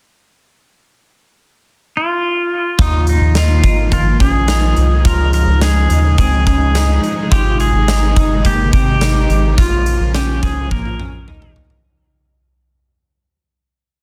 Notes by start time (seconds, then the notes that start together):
1.97 F4
2.78 D#2 D#3 F3 A#3 D#4 F4, kick, closed hi-hat
3.07 D#4, closed hi-hat
3.21 D#2
3.35 D#4 F4, snare, closed hi-hat
3.63 G#1 D#4, kick, closed hi-hat
3.91 A#3 F4, kick, closed hi-hat
4.20 A#1 C#4 G#4, kick, closed hi-hat
4.48 D#4, snare, closed hi-hat
4.76 C2, closed hi-hat
5.05 C#2 C#3 G#3 D#4 F4 A#4, kick, closed hi-hat
5.33 A#4, closed hi-hat
5.47 C#2
5.61 D#4 G#4, snare, closed hi-hat
5.89 D#2 D#4, closed hi-hat
6.18 C#2 C4 G#4, kick, closed hi-hat
6.47 C#4 G#4, kick, closed hi-hat
6.75 D#4, snare, closed hi-hat
7.03 closed hi-hat
7.31 G#1 C3 D#3 F4 G4, kick, closed hi-hat
7.60 G#4, closed hi-hat
7.74 G#1
7.88 D#4, snare, closed hi-hat
8.16 G1 D#4, kick, closed hi-hat
8.44 A#3 G4, kick, closed hi-hat
8.73 G#1 C4 G4, kick, closed hi-hat
9.01 D#4, snare, closed hi-hat
9.29 G#1, closed hi-hat
9.58 A#1 C#3 F3 A#3 F4, kick, closed hi-hat
9.86 closed hi-hat
10.00 A#1
10.15 C#4 G4, snare, closed hi-hat
10.43 C2 C#4 G#4, kick, closed hi-hat
10.71 A#1 A#3 A#4, kick, high tom
10.85 high tom
11.00 C#4, mid tom
11.28 D#4, mid tom
11.42 mid tom
11.56 floor tom
11.70 floor tom